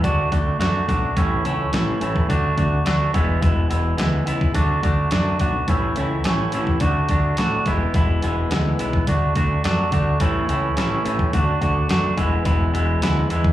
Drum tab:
HH |o-o-o-o-o-o-o-o-|o-o-o-o-o-o-o-o-|o-o-o-o-o-o-o-o-|o-o-o-o-o-o-o-o-|
SD |----o-o-----o---|----o-o-----o---|----o-------o---|----o-o-----o---|
BD |o-o---o-o------o|o-o---o-o------o|o-o---o-o------o|o-o---o-o------o|

HH |o-o-o-o-o-o-o-o-|o-o-o-o-o-o-o-o-|
SD |----o-------o---|----o-------o---|
BD |o-o---o-o------o|o-o---o-o------o|